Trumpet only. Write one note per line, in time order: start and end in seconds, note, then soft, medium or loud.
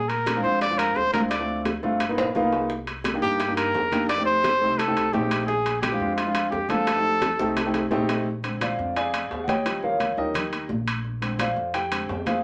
0.00 0.10 G#4 loud
0.09 0.42 A#4 medium
0.43 0.60 C5 loud
0.62 0.80 D5 loud
0.78 0.98 A#4 medium
0.96 1.13 C5 loud
1.13 1.21 A#4 medium
1.30 1.63 D5 loud
3.22 3.55 G4 loud
3.57 4.06 A#4 loud
4.09 4.25 D5 loud
4.26 4.80 C5 loud
4.78 5.14 A4 medium
5.13 5.46 G4 medium
5.47 5.80 G#4 medium
5.82 6.15 G4 medium
6.16 6.49 F4 medium
6.51 6.71 G4 medium
6.69 7.91 A4 loud